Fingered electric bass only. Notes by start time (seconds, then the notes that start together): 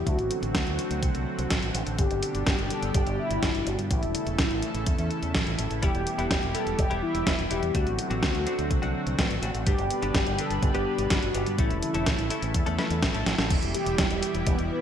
0.07 D2
0.18 A1
0.43 A1
0.55 D2
0.67 D2
0.91 D2
1.03 C2
1.15 C2
1.39 C2
1.51 A1
1.63 A1
1.75 A1
1.87 A1
1.99 G1
2.11 G1
2.35 G1
2.47 G1
2.59 G1
2.83 G1
2.95 G1
3.07 G1
3.31 G1
3.43 G1
3.55 G1
3.67 G1
3.79 G2
3.91 A1
4.03 E1
4.27 E1
4.39 A1
4.51 A1
4.75 A1
4.87 E2
4.99 E2
5.23 E2
5.35 A1
5.47 A1
5.59 A1
5.71 A1
5.83 E1
5.95 E1
6.19 E1
6.31 E1
6.43 E1
6.67 E1
6.79 E1
6.91 E1
7.15 E1
7.27 E1
7.39 E1
7.51 E1
7.63 E2
7.75 D2
7.87 A1
8.11 A1
8.23 D2
8.35 D2
8.59 D2
8.71 C2
8.83 C2
9.07 C2
9.19 A1
9.31 A1
9.43 A1
9.55 A1
9.67 G1
9.79 G1
10.03 G1
10.15 G1
10.27 G1
10.50 G1
10.63 G1
10.74 G1
10.99 G1
11.11 G1
11.23 G1
11.35 G1
11.47 G2
11.59 A1
11.71 E1
11.95 E1
12.07 A1
12.19 A1
12.42 A1
12.55 E2
12.66 E2
12.90 E2
13.03 A1
13.15 A1
13.27 A1
13.39 A1
13.51 E1
13.63 E1
13.87 E1
13.99 E1
14.11 E1
14.35 E1
14.47 E1
14.59 E1